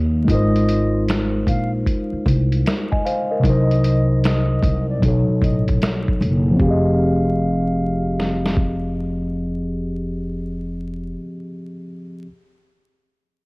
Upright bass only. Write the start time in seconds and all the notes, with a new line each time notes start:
Already playing: D#2
0.28 G#1
1.47 A#1
2.13 muted upright bass stroke
2.26 C2
3.44 C2
4.63 C2
5.03 B1
5.29 muted upright bass stroke
5.42 A1
5.81 B1
6.21 F#1
6.60 F1